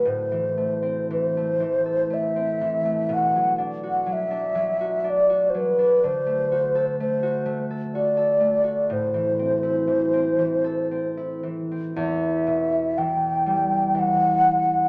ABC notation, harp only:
X:1
M:3/4
L:1/16
Q:1/4=61
K:Ador
V:1 name="Harp"
A,, E, A, C E, A, E, A A, C E, A, | B,, F, D F F, D F, F D F F, D | D, A, F A A, F A, A F A A, F | A,, E, C E E, C E, A C E E, C |
E,,2 B,,2 E,2 G,2 E,4 |]